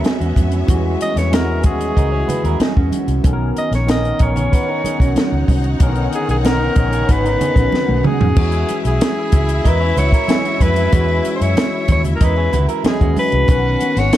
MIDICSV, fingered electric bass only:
0, 0, Header, 1, 3, 480
1, 0, Start_track
1, 0, Tempo, 640342
1, 513, Time_signature, 4, 2, 24, 8
1, 10623, End_track
2, 0, Start_track
2, 0, Title_t, "Fingered electric bass"
2, 0, Program_c, 0, 33
2, 153, Note_on_c, 0, 40, 69
2, 251, Note_off_c, 0, 40, 0
2, 270, Note_on_c, 0, 41, 85
2, 467, Note_off_c, 0, 41, 0
2, 513, Note_on_c, 0, 40, 93
2, 708, Note_off_c, 0, 40, 0
2, 870, Note_on_c, 0, 40, 82
2, 1230, Note_off_c, 0, 40, 0
2, 1230, Note_on_c, 0, 39, 94
2, 1426, Note_off_c, 0, 39, 0
2, 1475, Note_on_c, 0, 37, 86
2, 1669, Note_off_c, 0, 37, 0
2, 1831, Note_on_c, 0, 39, 80
2, 1929, Note_off_c, 0, 39, 0
2, 2077, Note_on_c, 0, 40, 71
2, 2172, Note_off_c, 0, 40, 0
2, 2307, Note_on_c, 0, 36, 84
2, 2406, Note_off_c, 0, 36, 0
2, 2431, Note_on_c, 0, 35, 100
2, 2627, Note_off_c, 0, 35, 0
2, 2784, Note_on_c, 0, 34, 82
2, 3080, Note_off_c, 0, 34, 0
2, 3150, Note_on_c, 0, 34, 91
2, 3346, Note_off_c, 0, 34, 0
2, 3748, Note_on_c, 0, 35, 82
2, 3847, Note_off_c, 0, 35, 0
2, 3990, Note_on_c, 0, 37, 83
2, 4088, Note_off_c, 0, 37, 0
2, 4107, Note_on_c, 0, 36, 88
2, 4304, Note_off_c, 0, 36, 0
2, 4349, Note_on_c, 0, 35, 91
2, 4546, Note_off_c, 0, 35, 0
2, 4712, Note_on_c, 0, 35, 77
2, 5005, Note_off_c, 0, 35, 0
2, 5070, Note_on_c, 0, 34, 81
2, 5266, Note_off_c, 0, 34, 0
2, 5313, Note_on_c, 0, 32, 81
2, 5509, Note_off_c, 0, 32, 0
2, 5667, Note_on_c, 0, 34, 75
2, 5767, Note_off_c, 0, 34, 0
2, 5915, Note_on_c, 0, 35, 76
2, 6011, Note_off_c, 0, 35, 0
2, 6155, Note_on_c, 0, 41, 87
2, 6252, Note_off_c, 0, 41, 0
2, 6272, Note_on_c, 0, 40, 102
2, 6468, Note_off_c, 0, 40, 0
2, 6634, Note_on_c, 0, 35, 79
2, 6731, Note_off_c, 0, 35, 0
2, 6991, Note_on_c, 0, 37, 98
2, 7187, Note_off_c, 0, 37, 0
2, 7233, Note_on_c, 0, 40, 94
2, 7429, Note_off_c, 0, 40, 0
2, 7470, Note_on_c, 0, 37, 85
2, 7569, Note_off_c, 0, 37, 0
2, 7949, Note_on_c, 0, 41, 98
2, 8146, Note_off_c, 0, 41, 0
2, 8193, Note_on_c, 0, 40, 102
2, 8388, Note_off_c, 0, 40, 0
2, 8554, Note_on_c, 0, 42, 85
2, 8651, Note_off_c, 0, 42, 0
2, 8909, Note_on_c, 0, 39, 92
2, 9105, Note_off_c, 0, 39, 0
2, 9152, Note_on_c, 0, 40, 89
2, 9347, Note_off_c, 0, 40, 0
2, 9388, Note_on_c, 0, 37, 95
2, 9487, Note_off_c, 0, 37, 0
2, 9752, Note_on_c, 0, 39, 86
2, 9849, Note_off_c, 0, 39, 0
2, 9989, Note_on_c, 0, 36, 87
2, 10088, Note_off_c, 0, 36, 0
2, 10109, Note_on_c, 0, 35, 103
2, 10305, Note_off_c, 0, 35, 0
2, 10468, Note_on_c, 0, 32, 88
2, 10567, Note_off_c, 0, 32, 0
2, 10623, End_track
3, 0, Start_track
3, 0, Title_t, "Muted fingered electric bass strokes"
3, 1950, Note_on_c, 9, 29, 42
3, 2025, Note_off_c, 9, 29, 0
3, 3628, Note_on_c, 9, 29, 42
3, 3703, Note_off_c, 9, 29, 0
3, 9632, Note_on_c, 9, 29, 46
3, 9707, Note_off_c, 9, 29, 0
3, 10623, End_track
0, 0, End_of_file